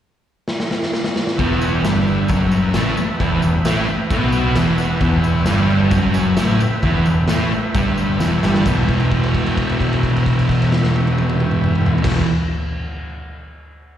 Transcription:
0.48 snare
0.60 snare
0.71 snare
0.83 snare
0.93 snare
1.04 snare
1.16 snare
1.27 snare
1.36 picked electric bass E1, distorted electric guitar E2 E3, transistor combo organ B4 E5 G5, kick, tambourine, crash
1.61 tambourine
1.80 distorted electric guitar G2, transistor combo organ B4 E5 G5
1.84 picked electric bass G1, distorted electric guitar G3, snare, tambourine, crash
2.07 tambourine
2.27 picked electric bass F#1, distorted electric guitar F#2, transistor combo organ B4 E5 G5, kick, tambourine, crash
2.31 distorted electric guitar F#3
2.52 tambourine
2.74 picked electric bass A1, distorted electric guitar A2 A3, transistor combo organ B4 E5 A5, snare, tambourine, crash
2.97 muted distorted electric guitar stroke, muted picked electric bass stroke, tambourine
3.17 picked electric bass E1, distorted electric guitar E2, transistor combo organ B4 E5 G5, kick, tambourine, crash
3.22 distorted electric guitar E3
3.42 picked electric bass E1, distorted electric guitar E2, tambourine
3.60 transistor combo organ B4 E5 G5
3.65 picked electric bass A1, distorted electric guitar A2 A3, snare, tambourine, crash
3.88 muted distorted electric guitar stroke, muted picked electric bass stroke, tambourine
4.06 transistor combo organ B4 E5 G5
4.10 picked electric bass B1, distorted electric guitar B2 B3, kick, tambourine, crash
4.32 tambourine
4.50 transistor combo organ B4 E5 F#5
4.56 picked electric bass E1, distorted electric guitar E2 E3, snare, tambourine, crash
4.78 tambourine
4.97 picked electric bass E1, distorted electric guitar E2, transistor combo organ B4 E5 G5, kick, tambourine, crash
5.03 distorted electric guitar E3
5.24 tambourine
5.45 picked electric bass G1, distorted electric guitar G2 G3, transistor combo organ B4 E5 G5, snare, tambourine, crash
5.70 tambourine
5.88 picked electric bass F#1, distorted electric guitar F#2, transistor combo organ B4 E5 G5, kick, tambourine, crash
5.92 distorted electric guitar F#3
6.14 tambourine
6.36 picked electric bass A1, distorted electric guitar A2 A3, transistor combo organ B4 E5 G5, snare, tambourine, crash
6.60 muted distorted electric guitar stroke, muted picked electric bass stroke, tambourine
6.80 picked electric bass E1, distorted electric guitar E2 E3, transistor combo organ B4 E5 G5, kick, tambourine, crash
7.06 picked electric bass E1, distorted electric guitar E2, tambourine
7.26 picked electric bass A1, distorted electric guitar A2 A3, transistor combo organ B4 E5 G5, snare, tambourine, crash
7.51 muted picked electric bass stroke, muted distorted electric guitar stroke, tambourine
7.71 picked electric bass G1, distorted electric guitar G2, transistor combo organ B4 E5 G5, kick, tambourine, crash
7.75 distorted electric guitar G3
7.98 tambourine
8.17 picked electric bass E1, distorted electric guitar E2, transistor combo organ B4 E5 G5, snare, tambourine
8.21 distorted electric guitar E3
8.43 picked electric bass G1, distorted electric guitar G2 G3, snare, tambourine
8.54 snare
8.63 picked electric bass E1, distorted electric guitar E2 B2, transistor combo organ B4 E5 G5, kick, crash, tambourine
8.69 distorted electric guitar E3
8.88 kick, crash
9.00 crash
9.11 kick, crash
9.23 crash
9.35 kick, crash
9.46 crash
9.57 kick, crash
9.69 crash
9.80 kick, crash
9.93 crash
10.03 kick, crash
10.16 crash
10.26 kick, crash
10.39 crash
10.49 kick, crash
10.62 crash
10.72 snare
10.83 snare
10.96 high tom
11.07 high tom
11.18 high tom
11.29 mid tom
11.40 mid tom
11.51 mid tom
11.64 mid tom
11.75 mid tom
11.86 floor tom
11.98 floor tom
12.03 picked electric bass E1, distorted electric guitar E2 B2, transistor combo organ B4 E5 G5, kick, snare, crash
12.07 distorted electric guitar E3

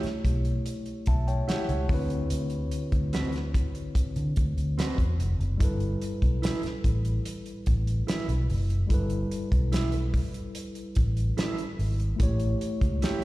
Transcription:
Already playing: tine electric piano A3 E4 G4 C#5
0.03 muted fingered electric bass stroke, snare, closed hi-hat
0.25 fingered electric bass B1, kick, closed hi-hat
0.45 closed hi-hat
0.66 closed hi-hat
0.86 closed hi-hat
1.06 fingered electric bass B1, tine electric piano E5 A5, kick, closed hi-hat
1.28 tine electric piano C#5 G5, closed hi-hat
1.48 clean electric guitar E4 G4 C#5, tine electric piano C#5 F#5, snare, closed hi-hat
1.69 fingered electric bass C#2, tine electric piano G4 C#5, closed hi-hat
1.87 fingered electric bass D2, tine electric piano D3 C4 E4, kick, open hi-hat
1.92 tine electric piano F#4 B4
2.10 closed hi-hat
2.30 fingered electric bass D2, closed hi-hat
2.50 closed hi-hat
2.71 closed hi-hat
2.92 fingered electric bass D2, kick, closed hi-hat
3.13 clean electric guitar C4 F#4 B4, snare, closed hi-hat
3.32 snare, closed hi-hat
3.54 kick, closed hi-hat
3.75 closed hi-hat
3.95 kick, closed hi-hat
4.16 fingered electric bass D3, closed hi-hat
4.36 fingered electric bass D2, kick, closed hi-hat
4.57 fingered electric bass D2, closed hi-hat
4.78 clean electric guitar C4 F#4 B4, snare, closed hi-hat
4.98 fingered electric bass E2, kick, closed hi-hat
5.19 fingered electric bass F1, closed hi-hat
5.39 fingered electric bass F#1, closed hi-hat
5.57 fingered electric bass G1, tine electric piano G3 E4, kick, closed hi-hat
5.62 tine electric piano A4 B4
5.80 closed hi-hat
6.02 closed hi-hat
6.22 fingered electric bass B1, kick, closed hi-hat
6.42 clean electric guitar E4 A4 B4, snare, closed hi-hat
6.63 muted fingered electric bass stroke, snare, closed hi-hat
6.84 fingered electric bass A1, kick, closed hi-hat
7.05 closed hi-hat
7.25 closed hi-hat
7.46 closed hi-hat
7.66 fingered electric bass A1, kick, closed hi-hat
7.87 closed hi-hat
8.07 clean electric guitar E4 A4 B4, snare, closed hi-hat
8.28 fingered electric bass B1, closed hi-hat
8.50 fingered electric bass F#1, open hi-hat
8.70 closed hi-hat
8.87 fingered electric bass G1, tine electric piano G3 E4, kick, closed hi-hat
8.91 tine electric piano A4 B4
9.10 closed hi-hat
9.31 closed hi-hat
9.52 fingered electric bass B1, kick, closed hi-hat
9.72 clean electric guitar E4 A4 B4, snare, closed hi-hat
9.92 closed hi-hat
10.14 kick, open hi-hat
10.34 closed hi-hat
10.55 closed hi-hat
10.75 closed hi-hat
10.95 fingered electric bass A1, kick, closed hi-hat
11.17 closed hi-hat
11.37 clean electric guitar E4 A4 B4, snare, closed hi-hat
11.58 closed hi-hat
11.79 fingered electric bass G#1, open hi-hat
12.00 closed hi-hat
12.16 fingered electric bass A1, tine electric piano A3 E4, kick, closed hi-hat
12.21 tine electric piano G4 C#5
12.40 closed hi-hat
12.61 closed hi-hat
12.81 fingered electric bass C#2, kick, closed hi-hat
13.02 clean electric guitar E4 G4 C#5, snare, closed hi-hat

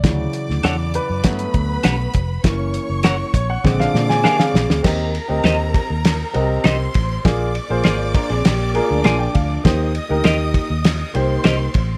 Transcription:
Already playing: upright piano D5
0.03 fingered electric bass D2, upright piano C#3 E3 F#3, violin section D5 D6, kick, snare, closed hi-hat
0.33 closed hi-hat
0.50 fingered electric bass D2, snare
0.63 fingered electric bass E2, clean electric guitar D4 A4 C#5 F#5, snare, closed hi-hat
0.94 upright piano B4, closed hi-hat
1.10 fingered electric bass F#2
1.24 fingered electric bass G2, upright piano F#3 A3 B3, violin section B4 B5, kick, snare, closed hi-hat
1.39 closed hi-hat
1.54 fingered electric bass D2, kick, closed hi-hat
1.83 fingered electric bass B1, clean electric guitar D4 G4 B4 F#5, snare, closed hi-hat
2.14 fingered electric bass F1, kick, closed hi-hat
2.43 fingered electric bass F#1, upright piano E3 A#3 C#4, violin section C#5 C#6, kick, snare, closed hi-hat
2.74 closed hi-hat
2.90 fingered electric bass F#1
3.03 clean electric guitar E4 A#4 C#5 F#5, snare, closed hi-hat
3.34 fingered electric bass A#1, upright piano C#5, kick, closed hi-hat
3.50 upright piano F#5
3.64 fingered electric bass A#1, upright piano D3 G#3 C4, violin section D5 D6, kick, snare
3.80 clean electric guitar F3 D4, upright piano F5, snare
3.94 fingered electric bass A#2, snare
4.09 clean electric guitar G#3 F4, upright piano G#5, snare
4.24 clean electric guitar A#3 D4 G4 G#4 A#4 F5, upright piano G#5, snare
4.39 clean electric guitar C4 G#4, upright piano F5, snare
4.54 fingered electric bass A#1, snare
4.69 fingered electric bass D2, snare
4.83 fingered electric bass D#2, upright piano C4 G4 A#4 D#5, violin section A#4 A#5, kick, snare, crash
5.15 ride
5.28 fingered electric bass D2, upright piano C4 G4 A#4 D#5
5.44 fingered electric bass D#2, clean electric guitar D#4 G4 C5 D#5, snare, ride
5.74 kick, ride
5.90 fingered electric bass D#2
6.05 snare, ride
6.34 fingered electric bass C2, upright piano C4 F#4 A#4 D#5, ride
6.41 upright piano G4
6.64 fingered electric bass C2, clean electric guitar D#4 G4 C5 D#5, violin section C5 C6, snare, ride
6.94 fingered electric bass A1, kick, ride
7.24 fingered electric bass A#1, upright piano A#3 F4 G#4 D5, violin section D5 D6, kick, snare, ride
7.55 ride
7.69 fingered electric bass A#1, upright piano A#3 F4 G#4 C5
7.83 fingered electric bass G#1, clean electric guitar A#3 F4 G#4 D5, snare, ride
8.15 clean electric guitar D4 A#4, kick, ride
8.29 fingered electric bass A#1, clean electric guitar C4 G#4, ride
8.45 fingered electric bass A#1, clean electric guitar A#3 G4, snare, ride
8.74 clean electric guitar G#3 F4, upright piano A#3 F4 G#4 A#4 A#5, ride
8.90 fingered electric bass D2, clean electric guitar F3 D4
9.04 fingered electric bass A#1, clean electric guitar A#3 F4 G#4 D5, upright piano G#5, snare, ride
9.19 upright piano G5
9.34 fingered electric bass D2, upright piano F5, kick, ride
9.64 fingered electric bass D#2, upright piano A#3 D#4 G4 C5, violin section D#5 D#6, kick, snare, ride
9.95 ride
10.09 fingered electric bass D2, upright piano A#3 D#4 G4 A#4
10.24 fingered electric bass D#2, clean electric guitar C4 G4 A#4 D#5, snare, ride
10.54 kick, ride
10.70 fingered electric bass D#2
10.84 snare, ride
11.14 fingered electric bass C2, upright piano A#3 D#4 G4 C5, violin section C5 C6, ride
11.44 fingered electric bass C2, clean electric guitar C4 G4 A#4 D#5, snare, ride
11.74 fingered electric bass A1, kick, ride

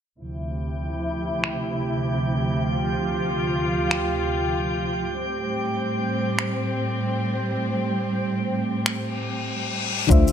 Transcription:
0.20 string section D2 C3 F3 E4, synth texture G4 G5
1.44 finger snap
2.67 string section F4
3.91 finger snap
5.15 string section A2 G3 C4
6.39 finger snap
8.86 finger snap, reverse cymbal
10.07 upright bass D2, fm electric piano D3 D4 F4 C5, kick, shaker
10.12 fm electric piano E5
10.28 shaker

